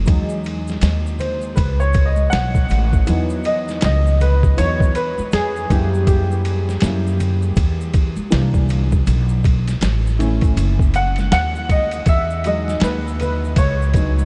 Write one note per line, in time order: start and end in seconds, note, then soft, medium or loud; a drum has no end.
0.06 0.79 E2 loud
0.06 3.02 F#3 medium
0.06 3.03 G#3 soft
0.06 3.03 D#4 medium
0.06 kick loud
0.06 ride medium
0.06 maracas medium
0.29 maracas soft
0.44 ride medium
0.44 maracas soft
0.68 snare soft
0.68 maracas medium
0.81 1.54 D#2 medium
0.81 snare loud
0.81 hi-hat pedal medium
0.81 ride medium
0.81 maracas medium
1.07 maracas soft
1.19 1.58 C5 medium
1.19 ride medium
1.19 low conga medium
1.19 maracas soft
1.42 maracas soft
1.56 2.28 C#2 medium
1.56 1.80 B4 medium
1.56 kick medium
1.56 ride medium
1.56 maracas medium
1.80 2.07 C#5 medium
1.80 maracas soft
1.93 kick medium
1.93 ride medium
1.93 maracas soft
2.05 2.30 D#5 medium
2.16 high conga medium
2.16 maracas soft
2.30 2.68 B1 medium
2.30 3.02 F#5 medium
2.30 snare loud
2.30 hi-hat pedal medium
2.30 ride medium
2.30 maracas medium
2.55 kick medium
2.55 maracas soft
2.69 3.06 A1 medium
2.69 ride medium
2.69 high conga soft
2.69 low conga medium
2.69 maracas soft
2.93 kick medium
2.93 maracas soft
3.07 3.79 E2 medium
3.07 4.15 E3 medium
3.07 4.16 F#3 medium
3.07 4.16 B3 medium
3.07 4.16 D#4 medium
3.07 ride medium
3.07 maracas medium
3.30 maracas soft
3.43 3.83 D#5 medium
3.43 ride medium
3.43 maracas soft
3.68 snare soft
3.68 maracas soft
3.81 4.54 C#2 loud
3.81 4.22 D#5 loud
3.81 snare loud
3.81 hi-hat pedal medium
3.81 ride medium
3.81 maracas medium
4.07 maracas soft
4.21 4.59 B4 medium
4.21 ride medium
4.21 low conga medium
4.21 maracas soft
4.43 kick medium
4.43 maracas soft
4.57 5.15 E2 medium
4.57 4.91 E3 medium
4.57 4.91 F#3 soft
4.57 4.91 B3 soft
4.57 4.91 D#4 medium
4.57 4.93 C#5 loud
4.57 ride medium
4.57 maracas medium
4.80 kick loud
4.80 maracas soft
4.95 5.34 B4 medium
4.95 ride medium
4.95 maracas soft
5.18 muted upright bass stroke soft
5.18 high conga medium
5.18 maracas soft
5.32 5.68 F2 medium
5.32 5.71 G#4 medium
5.32 snare loud
5.32 hi-hat pedal soft
5.32 ride medium
5.32 maracas medium
5.56 maracas soft
5.70 6.78 F#2 loud
5.70 6.80 G3 medium
5.70 6.81 A#3 medium
5.70 6.81 E4 medium
5.70 6.06 G4 medium
5.70 kick medium
5.70 ride medium
5.70 high conga soft
5.70 low conga medium
5.70 maracas soft
5.94 maracas soft
6.07 7.91 G4 medium
6.07 kick loud
6.07 ride medium
6.07 maracas medium
6.32 maracas soft
6.45 ride medium
6.45 maracas soft
6.69 snare soft
6.69 maracas medium
6.80 7.53 F#2 loud
6.80 7.16 G3 soft
6.80 7.16 A#3 soft
6.80 7.16 E4 medium
6.80 snare loud
6.80 hi-hat pedal medium
6.80 ride medium
6.80 maracas medium
7.07 maracas soft
7.20 ride medium
7.20 low conga medium
7.20 maracas soft
7.42 maracas soft
7.56 8.14 E2 loud
7.56 kick medium
7.56 ride medium
7.56 maracas medium
7.81 maracas soft
7.94 kick loud
7.94 ride medium
7.94 maracas soft
8.16 muted upright bass stroke soft
8.16 high conga medium
8.16 maracas soft
8.30 9.04 C2 loud
8.30 8.84 E3 medium
8.30 8.85 A#3 medium
8.30 8.85 D4 medium
8.30 snare loud
8.30 hi-hat pedal medium
8.30 ride medium
8.30 maracas medium
8.54 kick medium
8.54 maracas soft
8.69 ride medium
8.69 high conga soft
8.69 low conga medium
8.69 maracas soft
8.92 kick medium
8.92 maracas soft
9.07 9.78 B1 loud
9.07 ride medium
9.07 maracas medium
9.29 maracas soft
9.44 kick medium
9.44 ride medium
9.44 maracas soft
9.68 snare soft
9.68 ride soft
9.68 maracas soft
9.81 10.53 A1 medium
9.81 snare loud
9.81 hi-hat pedal medium
9.81 ride medium
9.81 maracas medium
10.07 maracas soft
10.19 12.03 A3 medium
10.19 12.03 C#4 medium
10.19 12.03 E4 medium
10.19 ride medium
10.19 low conga medium
10.19 maracas soft
10.41 kick medium
10.41 ride soft
10.41 maracas soft
10.57 11.28 F#1 medium
10.57 ride medium
10.57 maracas medium
10.79 kick loud
10.79 maracas soft
10.94 11.31 F#5 loud
10.94 ride medium
10.94 maracas soft
11.16 snare soft
11.16 ride soft
11.16 high conga medium
11.16 maracas soft
11.32 12.03 D#2 medium
11.32 11.71 F#5 loud
11.32 snare loud
11.32 hi-hat pedal medium
11.32 ride medium
11.32 maracas medium
11.55 maracas soft
11.69 12.09 D#5 medium
11.69 kick medium
11.69 ride medium
11.69 high conga soft
11.69 low conga medium
11.69 maracas soft
11.91 ride soft
11.91 maracas soft
12.06 12.78 E2 loud
12.06 12.47 E5 loud
12.06 kick loud
12.06 ride medium
12.06 maracas medium
12.30 maracas soft
12.44 12.98 F#3 medium
12.44 12.99 G#3 medium
12.44 12.99 D#4 medium
12.44 12.84 D#5 medium
12.44 ride medium
12.44 maracas soft
12.68 snare soft
12.68 maracas medium
12.80 13.53 D#2 medium
12.80 13.18 B4 medium
12.80 snare loud
12.80 hi-hat pedal medium
12.80 ride medium
12.80 maracas medium
13.08 maracas soft
13.20 13.59 B4 medium
13.20 ride soft
13.20 low conga medium
13.20 maracas soft
13.45 maracas soft
13.56 14.25 C#2 medium
13.56 14.25 C#5 medium
13.56 kick loud
13.56 ride medium
13.56 maracas medium
13.82 maracas soft
13.94 14.25 F#3 soft
13.94 14.25 G#3 soft
13.94 14.25 D#4 medium
13.94 kick medium
13.94 ride medium
13.94 maracas soft
14.19 high conga medium
14.19 maracas soft